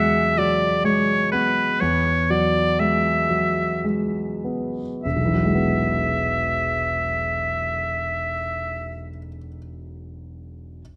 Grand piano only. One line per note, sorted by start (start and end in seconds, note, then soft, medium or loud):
0.00 1.76 E2 soft
0.00 0.18 F#3 soft
0.00 0.65 G#3 soft
0.38 0.84 F#3 soft
0.84 1.60 G#3 soft
1.33 2.10 B3 soft
1.82 5.01 E2 soft
2.30 3.09 F#3 soft
2.79 3.62 G#3 soft
3.30 3.84 F#3 soft
3.84 4.81 G#3 soft
4.44 5.05 B3 soft
5.06 9.08 E1 soft
5.16 9.18 B1 soft
5.25 9.28 E3 soft
5.34 9.37 F#3 soft
5.45 9.48 G#3 soft
5.54 9.57 B3 soft